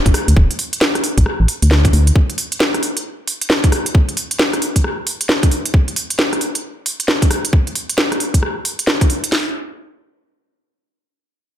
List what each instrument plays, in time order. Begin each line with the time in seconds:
0.06 fm bass F#1, kick, closed hi-hat
0.14 cross-stick, open hi-hat
0.28 fm bass D2, closed hi-hat
0.37 fm bass D1, kick
0.51 closed hi-hat
0.59 open hi-hat
0.73 closed hi-hat
0.81 snare
0.95 cross-stick, closed hi-hat
1.04 open hi-hat
1.18 fm bass A1, kick, closed hi-hat
1.26 cross-stick
1.40 fm bass A1
1.48 open hi-hat
1.62 fm bass D2, closed hi-hat
1.71 snare
1.85 kick, cross-stick, closed hi-hat
1.93 fm bass D2, open hi-hat
2.07 closed hi-hat
2.16 kick
2.30 closed hi-hat
2.38 open hi-hat
2.52 closed hi-hat
2.60 snare
2.74 cross-stick, closed hi-hat
2.83 open hi-hat
2.97 closed hi-hat
3.27 open hi-hat
3.41 closed hi-hat
3.50 snare
3.64 kick, closed hi-hat
3.72 cross-stick, open hi-hat
3.86 closed hi-hat
3.95 kick
4.09 closed hi-hat
4.17 open hi-hat
4.31 closed hi-hat
4.39 snare
4.53 cross-stick, closed hi-hat
4.62 open hi-hat
4.76 kick, closed hi-hat
4.84 cross-stick
5.07 open hi-hat
5.21 closed hi-hat
5.29 snare
5.43 kick, cross-stick, closed hi-hat
5.51 open hi-hat
5.66 closed hi-hat
5.74 kick
5.88 closed hi-hat
5.96 open hi-hat
6.10 closed hi-hat
6.19 snare
6.33 cross-stick, closed hi-hat
6.41 open hi-hat
6.55 closed hi-hat
6.86 open hi-hat
7.00 closed hi-hat
7.08 snare
7.22 kick, closed hi-hat
7.31 cross-stick, open hi-hat
7.45 closed hi-hat
7.53 kick
7.67 closed hi-hat
7.75 open hi-hat
7.89 closed hi-hat
7.98 snare
8.12 cross-stick, closed hi-hat
8.20 open hi-hat
8.34 kick, closed hi-hat
8.43 cross-stick
8.65 open hi-hat
8.79 closed hi-hat
8.87 snare
9.01 kick, cross-stick, closed hi-hat
9.10 open hi-hat
9.24 closed hi-hat
9.32 snare